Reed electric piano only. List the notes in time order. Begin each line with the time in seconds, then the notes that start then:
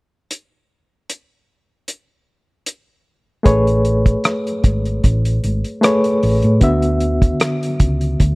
3.43 A3 G#4 B4 C#5
5.81 A3 G#4 B4 C#5
6.61 D3 B3 F#4 E5